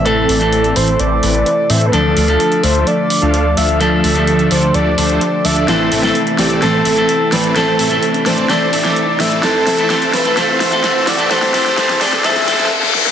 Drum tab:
HH |x---o-x-x-x-o-x-x---o-x-x---o-x-|x---o-x-x-x-o-x-x---o---x---o-x-|x---o-x-x-x-o-x-x---o-x-x---o-x-|x---o-x-x-x-o-x-x---o-x-x---o-x-|
SD |--------------------------------|--------------------------------|--------------------------------|o-----o-----o---o-----------o---|

HH |x---o-x-x-x-o-x-x---o-x-x---o-x-|x---o-x-x-x-o-x-x---o-x-x---o-x-|x-x-o-x-x-x-o-x-x-x-o-x---------|
SD |o-----------o---o-----o-----o---|o---o---o---o---o---o---o---o---|o-o-o-o-o-o-o-o-oooooooo--o-o-o-|